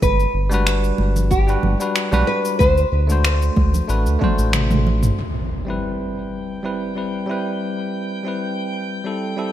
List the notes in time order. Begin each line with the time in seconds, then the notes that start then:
0.02 G1 B4, kick, high conga, cabasa
0.20 cabasa
0.34 G1
0.49 G3 D4 F#4, high conga, cabasa
0.54 B4
0.67 finger snap, cabasa
0.84 cabasa
0.98 G1, high conga
1.16 low conga, cabasa
1.31 G4, kick, cabasa
1.47 G3 D4 F#4 B4, cabasa
1.63 G1, high conga, low conga
1.79 G3 D4 F#4 B4, cabasa
1.96 finger snap, cabasa
2.11 B1 G3 D4 F#4 B4, high conga, low conga, cabasa
2.27 B4
2.45 cabasa
2.59 D2 C5, kick, high conga, cabasa
2.77 cabasa
2.92 D2
3.07 A3 D4 F#4, high conga, cabasa
3.12 C5
3.25 finger snap, cabasa
3.42 cabasa
3.57 D2, kick, high conga
3.74 low conga, cabasa
3.88 A1 A3 D4 F#4 B4, cabasa
4.06 D2, cabasa
4.19 A3 D4 F#4, kick, high tom, high conga
4.24 C5
4.38 A1, cabasa
4.53 finger snap, mid tom, cabasa
4.70 mid tom, high conga, cabasa
4.87 low conga
5.03 mid tom, cabasa
5.18 G5 G6, impact
5.65 G3 C4 E4
5.70 B4
6.63 G3 C4 E4 B4
6.95 G3 C4 E4 B4
7.26 G3 C4 E4
7.31 B4
8.23 G3 C4 E4
8.28 B4
9.04 G3 C4 E4 A4
9.36 G3 C4 E4 A4